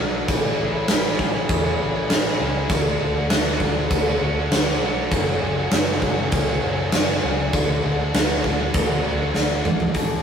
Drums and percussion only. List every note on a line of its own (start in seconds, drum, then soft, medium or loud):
0.28 kick loud
0.28 crash medium
0.88 snare loud
0.88 crash medium
1.19 kick medium
1.49 kick loud
1.49 crash medium
2.10 snare loud
2.10 crash medium
2.69 kick loud
2.69 crash medium
3.30 snare loud
3.30 crash medium
3.60 kick medium
3.91 kick loud
3.91 crash medium
4.52 snare loud
4.52 crash medium
5.11 kick loud
5.11 crash medium
5.71 snare loud
5.71 crash medium
6.02 kick medium
6.32 kick loud
6.32 crash medium
6.92 snare loud
6.92 crash medium
7.53 kick loud
7.53 crash medium
8.14 snare loud
8.14 crash medium
8.44 kick medium
8.74 kick loud
8.74 crash medium
9.34 snare medium
9.65 mid tom loud
9.80 floor tom medium
9.94 kick medium
9.94 open hi-hat medium